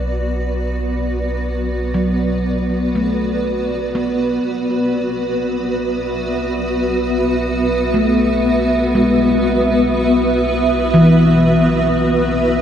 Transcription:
0.00 4.39 B1 medium
0.00 12.62 B3 medium
0.00 12.62 F#4 medium
0.00 12.62 B4 medium
0.00 5.79 D5 medium
1.94 3.14 F#3 medium
2.95 3.90 A3 medium
3.95 6.00 B3 medium
4.45 12.62 B1 medium
5.50 12.62 E5 medium
7.94 8.89 A3 medium
8.95 11.15 G#3 medium
10.94 12.62 E3 medium

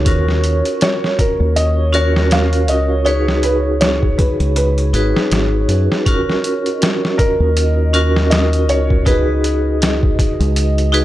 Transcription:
0.00 6.08 C#5 medium
0.05 0.61 D#2 medium
0.05 1.89 C#4 medium
0.05 1.90 F4 medium
0.05 1.90 F#4 medium
0.05 1.90 A#4 medium
0.05 kick loud
0.05 closed hi-hat medium
0.29 snare soft
0.44 closed hi-hat medium
0.65 closed hi-hat soft
0.81 1.20 C#5 medium
0.81 snare loud
0.81 closed hi-hat medium
1.04 snare soft
1.19 1.57 A#4 medium
1.19 kick loud
1.19 closed hi-hat medium
1.40 2.68 D#2 loud
1.56 1.95 D#5 loud
1.56 closed hi-hat medium
1.93 3.02 C#4 medium
1.93 3.02 F4 medium
1.93 3.02 F#4 medium
1.93 3.03 A#4 loud
1.93 2.29 C#5 medium
1.93 closed hi-hat medium
2.16 snare medium
2.31 2.67 F5 medium
2.31 snare loud
2.31 closed hi-hat medium
2.53 closed hi-hat soft
2.68 4.15 C#2 loud
2.68 3.07 D#5 loud
2.68 closed hi-hat medium
3.05 4.89 D#4 medium
3.05 4.89 F#4 medium
3.05 4.90 G#4 medium
3.05 4.90 B4 medium
3.05 3.44 C#5 medium
3.05 closed hi-hat medium
3.28 snare soft
3.43 3.52 B4 medium
3.43 closed hi-hat medium
3.81 4.16 C#5 medium
3.81 snare loud
3.81 closed hi-hat medium
4.03 kick medium
4.18 4.54 B4 medium
4.18 kick loud
4.18 closed hi-hat medium
4.40 4.93 C#2 medium
4.40 closed hi-hat soft
4.56 5.64 B4 medium
4.56 closed hi-hat medium
4.78 closed hi-hat soft
4.93 5.12 G#1 loud
4.93 6.02 D#4 medium
4.93 6.02 F#4 medium
4.93 6.03 G#4 medium
4.93 6.03 B4 medium
4.93 closed hi-hat medium
5.17 snare medium
5.32 5.65 G#1 medium
5.32 snare loud
5.32 closed hi-hat medium
5.68 5.87 F#2 loud
5.68 closed hi-hat medium
5.92 snare medium
6.06 7.90 C#4 medium
6.06 7.90 F4 medium
6.06 7.90 F#4 medium
6.06 7.90 A#4 medium
6.06 11.05 D#5 medium
6.06 kick loud
6.06 closed hi-hat medium
6.30 snare soft
6.44 closed hi-hat medium
6.66 closed hi-hat soft
6.82 snare loud
6.82 closed hi-hat medium
7.05 snare soft
7.18 7.89 A#4 loud
7.18 kick loud
7.18 closed hi-hat medium
7.40 8.68 D#2 medium
7.57 closed hi-hat medium
7.93 9.02 C#4 medium
7.93 9.02 F4 medium
7.93 9.03 F#4 medium
7.93 9.03 A#4 loud
7.93 closed hi-hat medium
8.16 snare medium
8.30 8.69 D#5 loud
8.30 snare loud
8.30 closed hi-hat medium
8.53 closed hi-hat soft
8.68 10.15 C#2 loud
8.68 9.04 C#5 medium
8.68 closed hi-hat medium
8.90 kick loud
9.05 10.89 D#4 medium
9.05 10.90 F#4 medium
9.05 10.90 G#4 medium
9.05 11.05 B4 medium
9.05 10.90 B4 medium
9.05 kick loud
9.05 closed hi-hat medium
9.44 closed hi-hat medium
9.82 snare loud
9.82 closed hi-hat medium
10.03 kick medium
10.19 kick loud
10.19 closed hi-hat medium
10.40 11.05 C#2 medium
10.40 closed hi-hat soft
10.56 closed hi-hat loud
10.78 closed hi-hat soft
10.92 11.05 D#4 loud
10.92 11.05 F#4 medium
10.92 11.05 G#4 medium
10.92 11.05 B4 loud
10.92 closed hi-hat medium

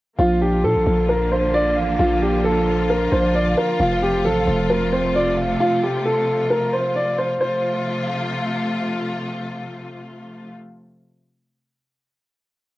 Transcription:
0.19 0.65 A#1 loud
0.19 3.76 D3 medium
0.19 0.63 F3 loud
0.19 7.37 F3 medium
0.19 3.76 A#3 medium
0.19 7.37 F4 medium
0.19 0.39 F4 loud
0.41 1.30 D4 medium
0.41 0.61 G4 medium
0.64 0.77 A#2 loud
0.64 0.85 F3 medium
0.64 1.06 A4 medium
0.76 0.86 A#1 loud
0.86 1.78 A#1 loud
0.86 1.08 F3 medium
1.09 1.98 F3 medium
1.09 1.29 A#4 medium
1.32 2.21 D4 medium
1.32 1.51 C5 medium
1.54 2.67 F4 medium
1.54 1.74 D5 loud
1.77 1.98 A1 loud
1.77 2.90 F5 loud
1.99 3.08 A#1 loud
1.99 2.43 F3 loud
1.99 2.19 F4 loud
2.22 3.11 D4 medium
2.22 2.42 G4 medium
2.44 2.66 F3 medium
2.44 2.87 A4 medium
2.67 2.88 F3 medium
2.89 3.78 F3 medium
2.89 3.09 A#4 medium
3.12 3.55 A#1 loud
3.12 3.80 D4 medium
3.12 3.32 C5 medium
3.35 3.80 F4 medium
3.35 3.54 D5 medium
3.57 3.77 A#4 medium
3.57 3.80 F5 medium
3.80 4.26 F1 loud
3.80 7.37 C3 medium
3.80 4.24 F3 loud
3.80 7.37 A3 medium
3.80 3.99 F4 loud
4.02 4.91 C4 medium
4.02 4.22 G4 medium
4.25 4.46 A1 loud
4.25 4.46 F3 medium
4.25 4.67 A4 medium
4.47 5.56 F1 loud
4.47 4.69 F3 medium
4.70 5.83 F3 medium
4.70 4.90 A#4 medium
4.92 6.05 C4 medium
4.92 5.12 C5 medium
5.15 6.28 F4 medium
5.15 5.35 D5 medium
5.37 6.50 F5 medium
5.60 5.80 F4 loud
5.83 6.03 G4 medium
6.05 6.48 A4 medium
6.50 6.70 A#4 medium
6.73 6.93 C5 medium
6.96 7.15 D5 medium
7.18 7.38 C5 medium
7.41 10.53 C3 medium
7.41 10.53 F3 medium
7.41 10.53 A3 medium
7.41 10.53 F4 medium
7.41 8.72 C5 medium

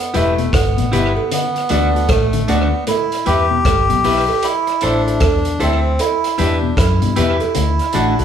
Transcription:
0.00 0.16 B3 loud
0.00 closed hi-hat medium
0.14 0.52 E1 loud
0.14 0.28 G2 medium
0.14 0.55 A3 medium
0.14 0.35 E4 medium
0.14 0.33 E4 medium
0.14 0.36 G4 medium
0.14 0.33 G4 loud
0.14 0.36 B4 medium
0.14 0.34 B4 medium
0.14 0.36 E5 loud
0.14 closed hi-hat medium
0.38 0.47 B2 medium
0.38 closed hi-hat soft
0.53 0.76 G1 loud
0.53 1.31 B3 medium
0.53 kick loud
0.53 cross-stick loud
0.53 closed hi-hat loud
0.53 cowbell medium
0.77 0.92 A1 loud
0.77 0.86 B2 medium
0.77 closed hi-hat medium
0.92 1.16 G1 medium
0.92 1.06 B2 medium
0.92 1.11 E4 medium
0.92 1.14 E4 medium
0.92 1.14 G4 medium
0.92 1.11 G4 medium
0.92 1.14 B4 medium
0.92 1.12 B4 medium
0.92 1.14 E5 loud
0.92 closed hi-hat medium
1.17 cowbell medium
1.31 1.45 D3 medium
1.31 2.12 B3 loud
1.31 closed hi-hat loud
1.55 muted clean electric guitar stroke soft
1.55 closed hi-hat soft
1.69 2.08 D2 loud
1.69 1.84 E3 medium
1.69 1.89 A3 medium
1.69 1.92 D4 loud
1.69 1.89 D4 medium
1.69 1.92 F#4 medium
1.69 1.90 F#4 loud
1.69 1.92 A4 medium
1.69 1.92 D5 loud
1.69 closed hi-hat medium
1.94 2.07 D4 medium
1.94 2.07 F#4 medium
1.94 2.08 A4 medium
1.94 2.08 D5 medium
1.94 closed hi-hat soft
2.08 2.46 A1 loud
2.08 2.50 A3 loud
2.08 kick loud
2.08 cross-stick loud
2.08 closed hi-hat medium
2.08 cowbell loud
2.33 2.42 D3 medium
2.33 closed hi-hat medium
2.48 2.72 D2 loud
2.48 2.62 D3 medium
2.48 2.67 A3 medium
2.48 2.85 B3 medium
2.48 2.70 D4 medium
2.48 2.68 D4 medium
2.48 2.70 F#4 medium
2.48 2.68 F#4 loud
2.48 2.70 A4 medium
2.48 2.70 D5 loud
2.48 closed hi-hat medium
2.87 3.01 A2 medium
2.87 3.28 E4 loud
2.87 closed hi-hat medium
2.87 cowbell medium
3.12 closed hi-hat medium
3.26 3.64 E2 loud
3.26 3.41 G2 medium
3.26 3.45 E4 medium
3.26 3.48 E4 medium
3.26 3.48 G4 medium
3.26 3.46 G4 medium
3.26 4.47 G4 loud
3.26 3.48 B4 medium
3.26 3.46 B4 medium
3.26 3.48 E5 loud
3.26 closed hi-hat medium
3.51 3.59 B2 medium
3.65 3.88 G1 medium
3.65 3.79 A2 medium
3.65 kick loud
3.65 cross-stick loud
3.65 closed hi-hat loud
3.65 cowbell medium
3.89 4.04 B1 medium
3.89 3.98 B2 medium
3.89 closed hi-hat medium
4.04 4.28 B1 loud
4.04 4.18 B2 medium
4.04 4.23 E4 medium
4.04 4.26 E4 medium
4.04 4.24 G4 medium
4.04 4.26 G4 medium
4.04 4.26 B4 medium
4.04 4.24 B4 medium
4.04 4.26 E5 loud
4.04 open hi-hat medium
4.28 cowbell medium
4.42 4.84 E4 loud
4.42 closed hi-hat loud
4.67 muted clean electric guitar stroke soft
4.67 closed hi-hat soft
4.81 5.20 A1 medium
4.81 5.63 D4 loud
4.81 5.01 E4 medium
4.81 5.04 E4 loud
4.81 5.01 A4 medium
4.81 5.04 A4 medium
4.81 5.02 C5 loud
4.81 5.04 C5 medium
4.81 5.04 E5 loud
4.81 closed hi-hat medium
5.06 5.19 E4 medium
5.06 5.20 A4 medium
5.06 5.20 C5 medium
5.06 5.20 E5 medium
5.06 closed hi-hat soft
5.20 5.58 E2 loud
5.20 kick loud
5.20 cross-stick loud
5.20 closed hi-hat medium
5.20 cowbell loud
5.45 closed hi-hat medium
5.60 5.98 D2 loud
5.60 6.01 C4 loud
5.60 5.81 E4 medium
5.60 5.79 E4 medium
5.60 5.82 A4 medium
5.60 5.79 A4 medium
5.60 5.82 C5 medium
5.60 5.80 C5 medium
5.60 5.82 E5 loud
5.60 closed hi-hat medium
5.99 6.40 E4 loud
5.99 closed hi-hat loud
5.99 cowbell medium
6.24 closed hi-hat medium
6.38 6.76 E2 loud
6.38 6.53 G2 medium
6.38 6.78 D4 medium
6.38 6.57 E4 medium
6.38 6.60 E4 loud
6.38 6.60 G4 medium
6.38 6.57 G4 medium
6.38 6.60 B4 medium
6.38 6.58 B4 medium
6.38 6.60 E5 medium
6.38 closed hi-hat medium
6.62 6.71 B2 medium
6.77 7.00 F#2 medium
6.77 8.25 E4 loud
6.77 kick loud
6.77 cross-stick loud
6.77 closed hi-hat loud
6.77 cowbell medium
7.02 7.16 G2 loud
7.02 7.10 B2 medium
7.02 closed hi-hat medium
7.16 7.40 E2 loud
7.16 7.30 B2 medium
7.16 7.35 E4 medium
7.16 7.38 E4 medium
7.16 7.38 G4 medium
7.16 7.35 G4 loud
7.16 7.38 B4 medium
7.16 7.36 B4 medium
7.16 7.38 E5 loud
7.16 closed hi-hat medium
7.40 closed hi-hat soft
7.40 cowbell medium
7.54 7.79 D2 loud
7.54 7.69 D3 medium
7.54 closed hi-hat loud
7.79 closed hi-hat soft
7.92 8.18 A1 loud
7.92 8.08 E3 medium
7.92 8.13 A3 medium
7.92 8.13 D4 loud
7.92 8.15 F#4 medium
7.92 8.14 F#4 loud
7.92 8.16 A4 medium
7.92 8.16 D5 medium
7.92 8.16 F#5 loud
7.92 closed hi-hat medium
8.18 8.25 C2 loud
8.18 8.25 F#4 medium
8.18 8.25 A4 medium
8.18 8.25 D5 medium
8.18 8.25 F#5 medium
8.18 closed hi-hat soft

